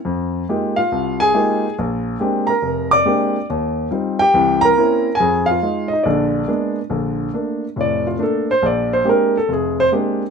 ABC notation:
X:1
M:4/4
L:1/8
Q:"Swing" 1/4=140
K:Bbmix
V:1 name="Grand piano"
z3 [Ff]2 [Aa]3 | z3 [Bb]2 [dd']3 | z3 [Gg]2 [Bb]3 | [Aa] [Ff]2 [Ee] [Dd]3 z |
[K:Bb] z4 d F A c | d c B A _A c z2 |]
V:2 name="Grand piano"
F,,2 [A,B,EFG] z C,,2 [A,B,EFG] z | B,,,2 [A,B,CDG] z F,,,2 [A,B,CDG] z | E,,2 [G,CEF] z [C,,=E,]2 [B,C_D=E] z | F,,2 [A,EF] z [B,,,D,]2 [A,B,_CD] z |
[K:Bb] [B,,,D,]2 [A,B,D] z [F,,,A,,]2 [A,B,D] z | B,,,2 [_A,B,CDG] z F,,,2 [A,B,CDG] z |]